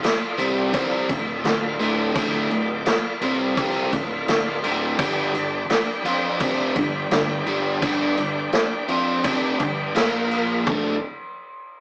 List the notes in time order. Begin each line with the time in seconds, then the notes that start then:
0.03 F4 A4 D5 F5, muted overdriven electric guitar stroke, muted picked electric bass stroke, snare, crash
0.38 C2 C3 G3 C4 F4 A4 D5 G5, crash
0.72 C2 C3 G3 C4 F4 A4 D5 F5, kick, crash
1.09 D1 D2 A2 F4 A4 D5 E5, kick, crash
1.44 D1 D2 A2 F4 A4 D5 F5, snare, crash
1.79 D1 D2 A2 D3 F4 A4 D5 G5, crash
2.15 D1 D2 A2 D3 F4 A4 D5 G5, kick, crash
2.50 D1 D2 A2 F4 A4 D5 G5, crash
2.86 F4 A4 D5 F5, muted overdriven electric guitar stroke, muted picked electric bass stroke, snare, crash
3.21 C2 C3 G3 C4 F4 A4 D5 F5, crash
3.57 C2 C3 G3 C4 F4 A4 D5 F5, kick, crash
3.92 D1 D2 A2 F4 A4 D5 F5, kick, crash
4.26 D1 D2 A2 F4 A4 D5 F5, snare, crash
4.62 D1 D2 A2 D3 F4 A4 D5 G5, crash
4.97 G1 G2 D3 G3 D4 G4 D5 G5, kick, crash
5.32 G1 G2 D3 D4 G4 D5 A5, crash
5.68 D4 G4 D5 G5, muted picked electric bass stroke, muted overdriven electric guitar stroke, snare, crash
6.04 F2 F3 C4 D4 F4 G4 D5 G5, crash
6.40 F1 F2 C3 F3 D4 G4 D5 A#5, kick, crash
6.75 G1 G2 D3 D4 G4 D5 G5, kick, crash
7.11 G1 G2 D3 D4 G4 D5 G5, snare, crash
7.46 G1 G2 D3 G3 D4 G4 D5 F5, crash
7.81 G1 G2 D3 G3 D4 G4 D5 G5, kick, crash
8.16 G1 G2 D3 D4 G4 D5 G5, crash
8.53 D4 G4 D5 G5, muted picked electric bass stroke, muted overdriven electric guitar stroke, snare, crash
8.88 F2 F3 C4 D4 F4 G4 D5 G5, crash
9.23 F1 F2 C3 F3 D4 G4 D5 G5, kick, crash
9.59 G1 G2 D3 D4 G4 D5 G5, kick, crash
9.95 A#1 A#2 F3 A#3 F4 A#4 F5, snare, crash
10.31 A#3 F4 A#4 F5, crash
10.66 D1 D2 A2 D3 D4 F4 A4 D5, kick, floor tom